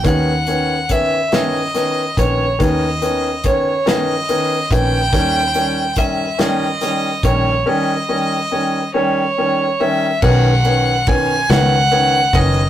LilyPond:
<<
  \new Staff \with { instrumentName = "Violin" } { \time 6/8 \key b \major \tempo 4. = 47 fis''4 e''8 dis''4 cis''8 | dis''4 cis''8 dis''4 g''8~ | g''4 e''8 dis''4 cis''8 | dis''4. cis''4 e''8 |
fis''4 gis''8 fis''4 dis''8 | }
  \new Staff \with { instrumentName = "Grand piano" } { \time 6/8 \key b \major <dis b cis'>8 <dis b cis'>8 <dis b cis'>8 <dis b cis'>8 <dis b cis'>8 <dis b cis'>8 | <dis b cis'>8 <dis b cis'>8 <dis b cis'>8 <dis b cis'>8 <dis b cis'>8 <dis b cis'>8 | <dis g cis'>8 <dis g cis'>8 <dis g cis'>8 <dis g cis'>8 <dis g cis'>8 <dis g cis'>8 | <dis g cis'>8 <dis g cis'>8 <dis g cis'>8 <dis g cis'>8 <dis g cis'>8 <dis g cis'>8 |
<dis b cis'>8 <dis b cis'>8 <dis b cis'>8 <dis b cis'>8 <dis b cis'>8 <dis b cis'>8 | }
  \new Staff \with { instrumentName = "Fingered electric bass" } { \clef bass \time 6/8 \key b \major dis,2~ dis,8 ais,,8 | dis,2~ dis,8 ais,,8 | dis,2~ dis,8 ais,,8 | r2. |
b,,4. cis,4 fis,,8 | }
  \new DrumStaff \with { instrumentName = "Drums" } \drummode { \time 6/8 <hh bd>8 hh8 <hh bd>8 <hh sn>8 <hh sn>8 <hh bd>8 | <hh bd>8 hh8 <hh bd>8 <hh sn>8 hh8 <hh bd>8 | <hh bd>8 hh8 <hh bd>8 <hh sn>8 <hh sn>8 <hh bd>8 | r4. r4. |
<cymc bd>8 cymr8 <bd cymr>8 <cymr sn>8 cymr8 <bd cymr>8 | }
>>